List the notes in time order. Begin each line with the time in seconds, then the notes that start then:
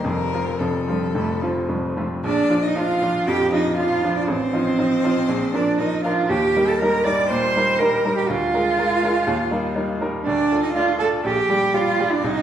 0.04 F1 F2 F3 A#4
0.33 F3 C4 F4
0.58 F1 F2 F3 A4
0.87 F3 G3 C4 F4
1.15 F1 F2 A3
1.42 F3 C4 F4
1.68 F1 F2 G3
1.97 F3 A3 C4 F4
2.24 A#1 D4 D5
2.50 F3 D4 F4
2.62 D#4 D#5
2.76 F3 D4 F4 F5
3.02 F3 D4 F4
3.26 F2 G4 G5
3.52 F3 D4 D#4 F4 D#5
3.77 F3 D4 F4 F5
4.03 F3 D4 F4
4.16 D4 D5
4.28 A1 C4 C5
4.53 F3 D#4 F4
4.79 F3 D#4 F4
5.04 F3 D#4 F4
5.29 A#1
5.54 F3 D4 A#4 D5
5.79 F3 D4 D#4 A#4 D#5
6.03 F3 D4 F4 A#4 F5
6.29 D#2 G4 G5
6.56 G3 D#4 A#4
6.68 A4 A5
6.80 G3 D#4 A#4 A#5
7.04 G3 D#4 A#4 D5 D6
7.30 A#2 C5 C6
7.56 G3 D#4 A#4
7.79 G3 D#4 A#4 A#5
8.05 G3 D#4 A#4
8.17 G4 G5
8.28 D2 F4 F5
8.54 G#3 F4 A#4
8.78 G#3 F4 A#4
9.03 G#3 F4 A#4
9.27 D#2
9.51 G3 D#4 A#4
9.76 G3 D#4 A#4
10.01 G3 D#4 A#4
10.25 D2 D4 D5
10.52 A3 F4 D5
10.63 D#4 D#5
10.74 A3 F4 D5 F5
10.98 A3 F4 A4 D5 A5
11.24 A#1 G4 G5
11.49 G3 G4 D5
11.74 G3 F4 G4 D5 F5
11.99 G3 G4 D5
12.12 D4 D5
12.23 C2 D#4 D#5